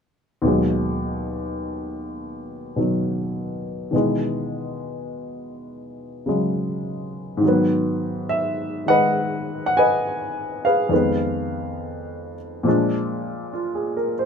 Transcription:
0, 0, Header, 1, 2, 480
1, 0, Start_track
1, 0, Key_signature, 5, "minor"
1, 0, Tempo, 872093
1, 242, Time_signature, 4, 2, 24, 8
1, 7845, End_track
2, 0, Start_track
2, 0, Title_t, "Grand piano"
2, 0, Program_c, 0, 0
2, 229, Note_on_c, 0, 39, 51
2, 239, Note_on_c, 0, 47, 47
2, 249, Note_on_c, 0, 54, 43
2, 257, Note_on_c, 0, 56, 52
2, 332, Control_c, 0, 64, 127
2, 1512, Note_off_c, 0, 47, 0
2, 1520, Note_on_c, 0, 47, 38
2, 1526, Note_on_c, 0, 51, 39
2, 1527, Note_off_c, 0, 54, 0
2, 1535, Note_on_c, 0, 54, 43
2, 2143, Note_off_c, 0, 51, 0
2, 2152, Note_on_c, 0, 51, 46
2, 2153, Note_off_c, 0, 47, 0
2, 2159, Note_off_c, 0, 39, 0
2, 2161, Note_on_c, 0, 47, 43
2, 2169, Note_off_c, 0, 54, 0
2, 2170, Note_off_c, 0, 56, 0
2, 2170, Note_on_c, 0, 52, 42
2, 2171, Control_c, 0, 64, 0
2, 2178, Note_on_c, 0, 56, 55
2, 2274, Control_c, 0, 64, 127
2, 3445, Note_on_c, 0, 49, 40
2, 3452, Note_off_c, 0, 56, 0
2, 3452, Note_on_c, 0, 54, 37
2, 3460, Note_on_c, 0, 56, 44
2, 4057, Note_on_c, 0, 44, 58
2, 4069, Note_off_c, 0, 51, 0
2, 4077, Note_on_c, 0, 51, 52
2, 4085, Note_off_c, 0, 47, 0
2, 4085, Note_off_c, 0, 49, 0
2, 4088, Note_off_c, 0, 54, 0
2, 4089, Note_off_c, 0, 52, 0
2, 4092, Note_off_c, 0, 56, 0
2, 4094, Control_c, 0, 64, 0
2, 4099, Note_on_c, 0, 54, 52
2, 4118, Note_on_c, 0, 59, 61
2, 4192, Control_c, 0, 64, 127
2, 4565, Note_on_c, 0, 76, 77
2, 4870, Note_off_c, 0, 51, 0
2, 4879, Note_on_c, 0, 51, 40
2, 4888, Note_on_c, 0, 78, 87
2, 4895, Note_on_c, 0, 56, 40
2, 4896, Note_off_c, 0, 76, 0
2, 4898, Note_on_c, 0, 75, 61
2, 4899, Note_on_c, 0, 71, 65
2, 5296, Note_off_c, 0, 78, 0
2, 5319, Note_on_c, 0, 78, 79
2, 5370, Note_off_c, 0, 78, 0
2, 5377, Note_on_c, 0, 80, 78
2, 5378, Note_off_c, 0, 75, 0
2, 5379, Note_off_c, 0, 71, 0
2, 5386, Note_on_c, 0, 75, 59
2, 5388, Note_on_c, 0, 71, 59
2, 5860, Note_off_c, 0, 71, 0
2, 5861, Note_on_c, 0, 77, 69
2, 5868, Note_off_c, 0, 80, 0
2, 5869, Note_on_c, 0, 71, 50
2, 5870, Note_on_c, 0, 68, 51
2, 5992, Note_off_c, 0, 44, 0
2, 5993, Note_off_c, 0, 75, 0
2, 5994, Note_off_c, 0, 51, 0
2, 5994, Note_on_c, 0, 41, 50
2, 6002, Note_on_c, 0, 51, 41
2, 6005, Note_off_c, 0, 56, 0
2, 6011, Note_off_c, 0, 59, 0
2, 6012, Control_c, 0, 64, 0
2, 6013, Note_off_c, 0, 54, 0
2, 6013, Note_on_c, 0, 56, 45
2, 6019, Note_on_c, 0, 59, 56
2, 6110, Control_c, 0, 64, 127
2, 6793, Note_off_c, 0, 77, 0
2, 6797, Note_off_c, 0, 71, 0
2, 6798, Note_off_c, 0, 68, 0
2, 6954, Note_on_c, 0, 46, 58
2, 6960, Note_off_c, 0, 41, 0
2, 6961, Note_on_c, 0, 53, 50
2, 6963, Note_off_c, 0, 56, 0
2, 6964, Note_off_c, 0, 51, 0
2, 6971, Note_on_c, 0, 56, 52
2, 6973, Note_off_c, 0, 59, 0
2, 6974, Control_c, 0, 64, 0
2, 6982, Note_on_c, 0, 62, 58
2, 7083, Control_c, 0, 64, 127
2, 7449, Note_on_c, 0, 65, 44
2, 7567, Note_on_c, 0, 68, 45
2, 7673, Note_off_c, 0, 65, 0
2, 7687, Note_on_c, 0, 70, 46
2, 7773, Note_off_c, 0, 68, 0
2, 7810, Note_on_c, 0, 72, 51
2, 7835, Note_off_c, 0, 70, 0
2, 7845, Note_off_c, 0, 46, 0
2, 7845, Note_off_c, 0, 53, 0
2, 7845, Note_off_c, 0, 56, 0
2, 7845, Note_off_c, 0, 62, 0
2, 7845, Note_off_c, 0, 72, 0
2, 7845, End_track
0, 0, End_of_file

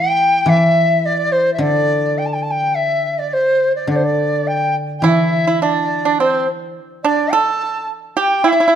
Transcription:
0, 0, Header, 1, 4, 480
1, 0, Start_track
1, 0, Tempo, 568720
1, 407, Time_signature, 4, 2, 24, 8
1, 7388, End_track
2, 0, Start_track
2, 0, Title_t, "Dizi"
2, 0, Program_c, 0, 73
2, 0, Note_on_c, 0, 79, 87
2, 408, Note_on_c, 0, 76, 83
2, 421, Note_off_c, 0, 79, 0
2, 888, Note_on_c, 0, 74, 78
2, 900, Note_off_c, 0, 76, 0
2, 1112, Note_on_c, 0, 72, 69
2, 1125, Note_off_c, 0, 74, 0
2, 1288, Note_off_c, 0, 72, 0
2, 1293, Note_on_c, 0, 76, 51
2, 1351, Note_on_c, 0, 74, 84
2, 1363, Note_off_c, 0, 76, 0
2, 1837, Note_on_c, 0, 79, 61
2, 1850, Note_off_c, 0, 74, 0
2, 1903, Note_on_c, 0, 81, 64
2, 1916, Note_off_c, 0, 79, 0
2, 1968, Note_on_c, 0, 79, 61
2, 1981, Note_off_c, 0, 81, 0
2, 2043, Note_on_c, 0, 81, 64
2, 2056, Note_off_c, 0, 79, 0
2, 2114, Note_on_c, 0, 79, 73
2, 2127, Note_off_c, 0, 81, 0
2, 2317, Note_on_c, 0, 76, 75
2, 2330, Note_off_c, 0, 79, 0
2, 2685, Note_on_c, 0, 74, 61
2, 2698, Note_off_c, 0, 76, 0
2, 2810, Note_on_c, 0, 72, 62
2, 2823, Note_off_c, 0, 74, 0
2, 3162, Note_off_c, 0, 72, 0
2, 3167, Note_on_c, 0, 74, 57
2, 3279, Note_off_c, 0, 74, 0
2, 3286, Note_on_c, 0, 74, 65
2, 3341, Note_on_c, 0, 72, 58
2, 3354, Note_off_c, 0, 74, 0
2, 3408, Note_on_c, 0, 74, 70
2, 3421, Note_off_c, 0, 72, 0
2, 3771, Note_on_c, 0, 79, 72
2, 3784, Note_off_c, 0, 74, 0
2, 4010, Note_off_c, 0, 79, 0
2, 4206, Note_on_c, 0, 79, 48
2, 4267, Note_on_c, 0, 76, 69
2, 4280, Note_off_c, 0, 79, 0
2, 4677, Note_off_c, 0, 76, 0
2, 4677, Note_on_c, 0, 76, 50
2, 4743, Note_on_c, 0, 74, 68
2, 4756, Note_off_c, 0, 76, 0
2, 5235, Note_on_c, 0, 72, 61
2, 5247, Note_off_c, 0, 74, 0
2, 5471, Note_off_c, 0, 72, 0
2, 5934, Note_on_c, 0, 74, 71
2, 6180, Note_on_c, 0, 81, 86
2, 6193, Note_off_c, 0, 74, 0
2, 6659, Note_off_c, 0, 81, 0
2, 6913, Note_on_c, 0, 79, 79
2, 7155, Note_on_c, 0, 76, 85
2, 7167, Note_off_c, 0, 79, 0
2, 7388, Note_off_c, 0, 76, 0
2, 7388, End_track
3, 0, Start_track
3, 0, Title_t, "Pipa"
3, 0, Program_c, 1, 105
3, 4251, Note_on_c, 1, 64, 73
3, 4594, Note_off_c, 1, 64, 0
3, 4620, Note_on_c, 1, 64, 61
3, 4734, Note_off_c, 1, 64, 0
3, 4744, Note_on_c, 1, 62, 57
3, 5082, Note_off_c, 1, 62, 0
3, 5108, Note_on_c, 1, 62, 53
3, 5220, Note_off_c, 1, 62, 0
3, 5234, Note_on_c, 1, 60, 47
3, 5454, Note_off_c, 1, 60, 0
3, 5946, Note_on_c, 1, 62, 62
3, 6168, Note_off_c, 1, 62, 0
3, 6185, Note_on_c, 1, 69, 77
3, 6628, Note_off_c, 1, 69, 0
3, 6892, Note_on_c, 1, 67, 66
3, 7116, Note_off_c, 1, 67, 0
3, 7124, Note_on_c, 1, 64, 61
3, 7185, Note_off_c, 1, 64, 0
3, 7195, Note_on_c, 1, 64, 43
3, 7250, Note_off_c, 1, 64, 0
3, 7260, Note_on_c, 1, 64, 51
3, 7313, Note_off_c, 1, 64, 0
3, 7323, Note_on_c, 1, 64, 46
3, 7382, Note_off_c, 1, 64, 0
3, 7388, End_track
4, 0, Start_track
4, 0, Title_t, "Guzheng"
4, 0, Program_c, 2, 107
4, 0, Note_on_c, 2, 52, 48
4, 376, Note_off_c, 2, 52, 0
4, 387, Note_on_c, 2, 52, 52
4, 1337, Note_on_c, 2, 50, 50
4, 1825, Note_off_c, 2, 52, 0
4, 2793, Note_off_c, 2, 50, 0
4, 3270, Note_on_c, 2, 50, 46
4, 4236, Note_on_c, 2, 52, 48
4, 4736, Note_off_c, 2, 50, 0
4, 5695, Note_off_c, 2, 52, 0
4, 7388, End_track
0, 0, End_of_file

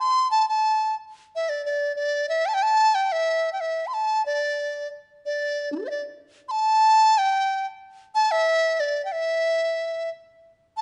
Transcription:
0, 0, Header, 1, 2, 480
1, 0, Start_track
1, 0, Tempo, 655738
1, 9, Time_signature, 2, 2, 24, 8
1, 4329, Tempo, 640342
1, 6729, Tempo, 658617
1, 7967, End_track
2, 0, Start_track
2, 0, Title_t, "Dizi"
2, 0, Program_c, 0, 73
2, 0, Note_on_c, 0, 84, 84
2, 223, Note_off_c, 0, 84, 0
2, 227, Note_on_c, 0, 81, 77
2, 352, Note_off_c, 0, 81, 0
2, 356, Note_on_c, 0, 81, 80
2, 699, Note_off_c, 0, 81, 0
2, 993, Note_on_c, 0, 76, 72
2, 1092, Note_on_c, 0, 74, 65
2, 1103, Note_off_c, 0, 76, 0
2, 1206, Note_off_c, 0, 74, 0
2, 1210, Note_on_c, 0, 74, 67
2, 1428, Note_off_c, 0, 74, 0
2, 1433, Note_on_c, 0, 74, 82
2, 1658, Note_off_c, 0, 74, 0
2, 1676, Note_on_c, 0, 76, 78
2, 1798, Note_on_c, 0, 79, 70
2, 1809, Note_off_c, 0, 76, 0
2, 1811, Note_on_c, 0, 81, 69
2, 1822, Note_off_c, 0, 79, 0
2, 1859, Note_on_c, 0, 79, 86
2, 1870, Note_off_c, 0, 81, 0
2, 1921, Note_on_c, 0, 81, 87
2, 1932, Note_off_c, 0, 79, 0
2, 2157, Note_on_c, 0, 79, 77
2, 2168, Note_off_c, 0, 81, 0
2, 2285, Note_on_c, 0, 76, 81
2, 2296, Note_off_c, 0, 79, 0
2, 2578, Note_off_c, 0, 76, 0
2, 2583, Note_on_c, 0, 79, 51
2, 2640, Note_on_c, 0, 76, 71
2, 2651, Note_off_c, 0, 79, 0
2, 2833, Note_on_c, 0, 84, 54
2, 2844, Note_off_c, 0, 76, 0
2, 2886, Note_on_c, 0, 81, 75
2, 2897, Note_off_c, 0, 84, 0
2, 3112, Note_off_c, 0, 81, 0
2, 3117, Note_on_c, 0, 74, 84
2, 3573, Note_off_c, 0, 74, 0
2, 3847, Note_on_c, 0, 74, 67
2, 4184, Note_off_c, 0, 74, 0
2, 4188, Note_on_c, 0, 62, 32
2, 4210, Note_off_c, 0, 62, 0
2, 4215, Note_on_c, 0, 64, 36
2, 4227, Note_on_c, 0, 67, 44
2, 4229, Note_off_c, 0, 64, 0
2, 4249, Note_off_c, 0, 67, 0
2, 4254, Note_on_c, 0, 69, 48
2, 4275, Note_off_c, 0, 69, 0
2, 4280, Note_on_c, 0, 72, 50
2, 4289, Note_on_c, 0, 76, 77
2, 4300, Note_off_c, 0, 72, 0
2, 4303, Note_on_c, 0, 74, 57
2, 4304, Note_off_c, 0, 76, 0
2, 4407, Note_off_c, 0, 74, 0
2, 4757, Note_on_c, 0, 84, 69
2, 4778, Note_on_c, 0, 81, 91
2, 4789, Note_off_c, 0, 84, 0
2, 5278, Note_on_c, 0, 79, 84
2, 5289, Note_off_c, 0, 81, 0
2, 5642, Note_off_c, 0, 79, 0
2, 6004, Note_on_c, 0, 81, 91
2, 6128, Note_on_c, 0, 76, 92
2, 6139, Note_off_c, 0, 81, 0
2, 6493, Note_on_c, 0, 74, 77
2, 6504, Note_off_c, 0, 76, 0
2, 6676, Note_off_c, 0, 74, 0
2, 6681, Note_on_c, 0, 79, 51
2, 6733, Note_on_c, 0, 76, 81
2, 6744, Note_off_c, 0, 79, 0
2, 7447, Note_off_c, 0, 76, 0
2, 7936, Note_on_c, 0, 81, 76
2, 7967, Note_off_c, 0, 81, 0
2, 7967, End_track
0, 0, End_of_file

